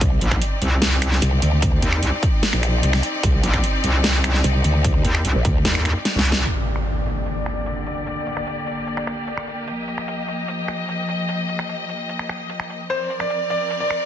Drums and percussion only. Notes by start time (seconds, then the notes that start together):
0.01 kick, closed hi-hat
0.21 closed hi-hat
0.31 finger snap, kick
0.42 closed hi-hat
0.62 closed hi-hat
0.82 snare, closed hi-hat
1.02 finger snap, closed hi-hat
1.12 snare
1.22 closed hi-hat
1.42 closed hi-hat
1.62 kick, closed hi-hat
1.82 closed hi-hat
1.93 finger snap
2.03 closed hi-hat
2.23 kick, closed hi-hat
2.43 snare, closed hi-hat
2.53 finger snap
2.63 finger snap, closed hi-hat
2.83 closed hi-hat
2.93 finger snap, snare
3.03 closed hi-hat
3.23 kick, closed hi-hat
3.44 closed hi-hat
3.54 finger snap, kick
3.64 closed hi-hat
3.84 closed hi-hat
4.04 snare, closed hi-hat
4.24 finger snap, closed hi-hat
4.34 snare
4.44 closed hi-hat
4.64 closed hi-hat
4.84 kick, closed hi-hat
5.05 closed hi-hat
5.15 finger snap
5.25 closed hi-hat
5.45 kick, closed hi-hat
5.65 snare, closed hi-hat
5.75 finger snap
5.85 finger snap, closed hi-hat
6.05 snare, closed hi-hat
6.19 snare
6.25 closed hi-hat
6.32 snare
6.46 closed hi-hat, crash
6.66 closed hi-hat
6.76 finger snap
6.86 closed hi-hat
7.06 closed hi-hat
7.26 closed hi-hat
7.46 finger snap, closed hi-hat
7.66 closed hi-hat
7.86 closed hi-hat
8.07 closed hi-hat
8.27 closed hi-hat
8.37 finger snap
8.47 closed hi-hat
8.67 closed hi-hat
8.87 closed hi-hat
8.97 finger snap
9.07 finger snap, closed hi-hat
9.27 closed hi-hat
9.37 finger snap
9.48 closed hi-hat
9.68 closed hi-hat
9.88 closed hi-hat
9.98 finger snap
10.08 closed hi-hat
10.28 closed hi-hat
10.48 closed hi-hat
10.68 finger snap, closed hi-hat
10.88 closed hi-hat
11.09 closed hi-hat
11.29 closed hi-hat
11.49 closed hi-hat
11.59 finger snap
11.69 closed hi-hat
11.89 closed hi-hat
12.09 closed hi-hat
12.19 finger snap
12.29 finger snap, closed hi-hat
12.50 closed hi-hat
12.60 finger snap
12.70 closed hi-hat
12.90 closed hi-hat
13.10 closed hi-hat
13.20 finger snap
13.30 closed hi-hat
13.50 closed hi-hat
13.70 closed hi-hat
13.91 finger snap, closed hi-hat